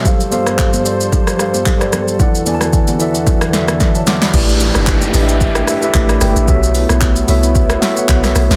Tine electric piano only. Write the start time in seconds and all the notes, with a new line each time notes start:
0.04 G3 G4 A4 C5 F5
0.30 G3 G4 A4 C5 F5
0.84 G3 G4 A4 C5 D5
1.38 G3 G4 A4 C5 F5
1.79 G3 G4 A4 C5 D5
2.18 E3 E4 A4 D5 F#5
2.45 E3 E4 A4 D5 G#5
2.55 A5
2.98 E3 E4 A4 D5 E5
3.52 E3 E4 A4 D5 E5
3.95 C#5 A5
4.07 F#5 D6
4.22 D5 B5
4.32 A3 E4 G4 B4 D5
5.13 A3 E4 G4 B4 D#5
5.23 E5
5.66 A3 E4 G4 B4 E5
5.81 A3 E4 G4 B4 E5
5.95 D6
6.10 D5 B5
6.22 B4 G5
6.36 G4 E5
6.47 B3 F#4 A4 C#5 E5
7.27 B3 F#4 A4 C#5 E5
7.80 B3 F#4 A4 C#5 E5
7.95 B3 F#4 A4 C#5 F#5
8.22 B3 F#4 A4 C#5 E5